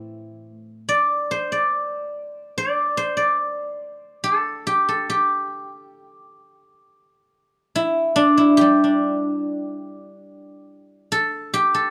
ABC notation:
X:1
M:2/4
L:1/16
Q:1/4=71
K:none
V:1 name="Guzheng"
z4 d2 c d- | d z3 d2 c d- | d z3 A2 G A | G6 z2 |
z4 E2 D E | G6 z2 | z4 A2 G A |]
V:2 name="Guzheng"
[A,,E,A,CE]4 z4 | z8 | z8 | z8 |
z8 | G, D6- D- | D z6 z |]